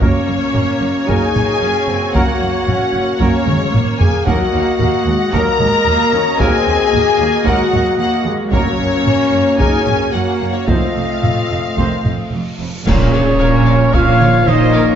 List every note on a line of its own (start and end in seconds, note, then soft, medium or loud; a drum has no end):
0.00 0.11 F#1 medium
0.00 0.09 F#2 medium
0.00 0.20 F#3 medium
0.00 1.08 A#3 medium
0.00 0.20 A#3 medium
0.00 4.10 A#3 medium
0.00 1.06 C#4 medium
0.00 4.10 F#4 medium
0.00 0.20 A#4 medium
0.00 4.10 A#4 medium
0.00 1.06 C#5 medium
0.00 1.09 C#5 medium
0.00 4.10 C#5 medium
0.00 taiko medium
0.27 0.37 F#1 medium
0.27 0.35 F#2 medium
0.54 0.63 F#1 medium
0.54 0.62 F#2 medium
0.54 taiko low-mid medium
0.81 0.91 F#1 medium
0.81 0.89 F#2 medium
1.08 1.18 F#1 medium
1.08 1.16 F#2 medium
1.08 1.28 F#3 medium
1.08 1.27 A#3 medium
1.08 1.62 D#4 medium
1.08 2.14 G#4 loud
1.08 1.27 A#4 medium
1.08 2.12 G#5 medium
1.08 2.15 G#5 medium
1.08 taiko medium
1.35 1.44 F#1 medium
1.35 1.43 F#2 medium
1.35 taiko low-mid medium
1.61 1.71 F#1 medium
1.61 1.69 F#2 medium
1.61 1.88 C#4 medium
1.87 1.97 F#1 medium
1.87 1.95 F#2 medium
1.87 2.15 C4 medium
2.14 2.24 F#1 medium
2.14 2.22 F#2 medium
2.14 2.33 F#3 medium
2.14 2.33 A#3 medium
2.14 2.68 A#3 medium
2.14 3.21 F#4 loud
2.14 2.33 A#4 medium
2.14 3.18 F#5 medium
2.14 3.20 F#5 medium
2.14 taiko medium
2.40 2.49 F#1 medium
2.40 2.48 F#2 medium
2.67 2.76 F#1 medium
2.67 2.75 F#2 medium
2.67 3.21 C#4 medium
2.67 taiko low-mid medium
2.93 3.02 F#1 medium
2.93 3.01 F#2 medium
3.20 3.28 F#1 medium
3.20 3.28 F#2 medium
3.20 3.39 F#3 medium
3.20 3.47 A#3 medium
3.20 3.40 A#3 medium
3.20 3.84 C#4 loud
3.20 3.39 A#4 medium
3.20 4.00 C#5 medium
3.20 taiko medium
3.46 3.55 F#1 medium
3.46 3.54 F#2 medium
3.46 3.74 G#3 medium
3.46 taiko mid medium
3.73 3.82 F#1 medium
3.73 3.81 F#2 medium
3.73 4.27 A#3 medium
3.73 taiko low-mid medium
3.99 4.08 F#1 medium
3.99 4.08 F#2 medium
3.99 4.27 G#4 loud
3.99 4.25 G#5 medium
3.99 4.27 G#5 medium
3.99 taiko low medium
4.25 4.35 D#2 medium
4.25 4.45 F#3 medium
4.25 4.54 F#3 medium
4.25 10.64 A#3 medium
4.25 4.46 A#3 medium
4.25 5.33 F#4 loud
4.25 10.64 F#4 medium
4.25 4.45 A#4 medium
4.25 10.64 A#4 medium
4.25 8.53 D#5 medium
4.25 5.30 F#5 medium
4.25 5.31 F#5 medium
4.25 taiko loud
4.53 4.61 D#2 medium
4.53 4.79 A#3 medium
4.79 4.87 D#2 medium
4.79 4.88 D#2 medium
4.79 5.06 A#3 medium
4.79 taiko low-mid medium
5.06 5.14 D#2 medium
5.06 5.33 G#3 medium
5.33 5.41 D#2 medium
5.33 5.42 D#2 medium
5.33 5.60 F#3 medium
5.33 5.52 F#3 medium
5.33 5.52 A#3 medium
5.33 5.52 A#4 medium
5.33 6.39 A#4 loud
5.33 6.37 A#5 loud
5.33 6.40 A#5 loud
5.33 taiko medium
5.60 5.68 D#2 medium
5.60 5.87 G#3 medium
5.60 taiko low-mid medium
5.86 5.94 D#2 medium
5.86 6.12 A#3 medium
6.13 6.21 D#2 medium
6.13 6.40 C#4 medium
6.39 6.47 D#2 medium
6.39 6.48 D#2 medium
6.39 6.58 F#3 medium
6.39 6.58 A#3 medium
6.39 6.93 C4 medium
6.39 7.44 G#4 loud
6.39 6.58 A#4 medium
6.39 7.46 G#5 loud
6.39 7.44 G#5 loud
6.39 taiko loud
6.66 6.74 D#2 medium
6.66 6.75 D#2 medium
6.93 7.01 D#2 medium
6.93 7.02 D#2 medium
6.93 7.46 A#3 medium
6.93 taiko low-mid medium
7.19 7.27 D#2 medium
7.19 7.28 D#2 medium
7.46 7.54 D#2 medium
7.46 7.55 D#2 medium
7.46 7.65 F#3 medium
7.46 7.73 G#3 medium
7.46 7.65 A#3 medium
7.46 7.99 F#4 loud
7.46 7.64 A#4 medium
7.46 7.98 F#5 medium
7.46 taiko medium
7.73 7.81 D#2 medium
7.73 8.00 F#3 medium
7.73 taiko low-mid medium
7.98 8.06 D#2 medium
7.98 8.07 D#2 medium
7.98 8.26 A#3 medium
7.98 8.26 F#4 loud
7.98 8.25 F#5 medium
7.98 8.26 F#5 medium
8.25 8.33 D#2 medium
8.25 8.52 G#3 medium
8.52 8.60 F#1 medium
8.52 8.60 F#2 medium
8.52 8.71 F#3 medium
8.52 9.06 F#3 medium
8.52 8.71 A#3 medium
8.52 9.56 C#4 loud
8.52 8.72 A#4 medium
8.52 9.55 C#5 loud
8.52 9.56 C#5 medium
8.52 10.68 C#5 medium
8.52 taiko loud
8.79 8.87 F#1 medium
8.79 8.87 F#2 medium
9.05 9.13 F#1 medium
9.05 9.14 F#2 medium
9.05 9.60 A#3 medium
9.05 taiko low-mid medium
9.32 9.40 F#1 medium
9.32 9.41 F#2 medium
9.58 9.67 F#1 medium
9.58 9.68 F#2 medium
9.58 9.79 F#3 medium
9.58 9.78 A#3 medium
9.58 9.87 D#4 medium
9.58 10.13 G#4 loud
9.58 9.78 A#4 medium
9.58 10.12 G#5 medium
9.58 10.14 G#5 loud
9.58 taiko medium
9.87 9.95 F#1 medium
9.87 9.95 F#2 medium
9.87 10.14 C#4 medium
9.87 taiko low-mid medium
10.13 10.22 F#1 medium
10.13 10.21 F#2 medium
10.13 10.67 A#3 medium
10.13 10.54 F#4 medium
10.13 10.54 F#5 medium
10.41 10.50 F#1 medium
10.41 10.49 F#2 medium
10.54 10.69 C#4 medium
10.54 10.68 C#5 medium
10.67 10.77 F1 medium
10.67 10.76 F2 medium
10.67 10.87 D#3 medium
10.67 10.87 A3 medium
10.67 12.60 A3 medium
10.67 12.59 C4 medium
10.67 12.59 F4 medium
10.67 12.56 F4 medium
10.67 12.59 A4 medium
10.67 10.87 C5 medium
10.67 12.59 D#5 medium
10.67 12.59 F5 medium
10.67 taiko loud
10.67 reverse cymbal medium
10.96 11.04 F1 medium
10.96 11.04 F2 medium
11.23 11.32 F1 medium
11.23 11.31 F2 medium
11.23 taiko low-mid medium
11.51 11.59 F1 medium
11.51 11.59 F2 medium
11.78 11.86 F1 medium
11.78 11.86 F2 medium
11.78 11.97 D#3 medium
11.78 11.97 A3 medium
11.78 11.97 C5 medium
11.78 taiko medium
12.05 12.13 F1 medium
12.05 12.13 F2 medium
12.05 taiko low-mid medium
12.32 12.40 F1 medium
12.32 12.42 F2 soft
12.59 12.67 F1 soft
12.59 12.68 F2 medium
12.86 13.34 A#1 medium
12.86 13.34 A#2 medium
12.86 14.95 F3 medium
12.86 13.90 C#4 loud
12.86 14.95 C#4 medium
12.86 14.95 F4 medium
12.86 13.12 F4 medium
12.86 12.94 A#4 medium
12.86 14.95 A#4 medium
12.86 12.95 C#5 medium
12.86 13.90 C#5 loud
12.86 14.95 C#5 medium
12.86 12.94 F5 medium
12.86 concert bass drum medium
12.86 taiko loud
12.86 crash medium
12.86 impact medium
13.13 13.41 G#4 medium
13.13 13.21 A#4 medium
13.13 13.22 C#5 medium
13.13 13.22 F5 medium
13.40 13.88 A#1 medium
13.40 13.88 A#2 medium
13.40 13.48 A#4 medium
13.40 13.94 A#4 medium
13.40 13.48 C#5 medium
13.40 13.48 F5 medium
13.67 13.75 A#4 medium
13.67 13.75 C#5 medium
13.67 13.75 F5 medium
13.93 14.41 A#1 medium
13.93 14.41 A#2 medium
13.93 14.47 F4 loud
13.93 14.01 A#4 medium
13.93 14.01 C#5 medium
13.93 14.47 C#5 medium
13.93 14.47 F5 loud
13.93 14.02 F5 medium
13.93 taiko medium
14.20 14.28 A#4 medium
14.20 14.28 C#5 medium
14.20 14.28 F5 medium
14.20 taiko mid medium
14.46 14.94 A#1 medium
14.46 14.94 A#2 medium
14.46 14.95 D#4 loud
14.46 14.54 A#4 medium
14.46 14.73 C5 medium
14.46 14.55 C#5 medium
14.46 14.95 D#5 loud
14.46 14.55 F5 medium
14.46 taiko mid medium
14.73 14.82 A#4 medium
14.73 14.95 A#4 medium
14.73 14.82 C#5 medium
14.73 14.81 F5 medium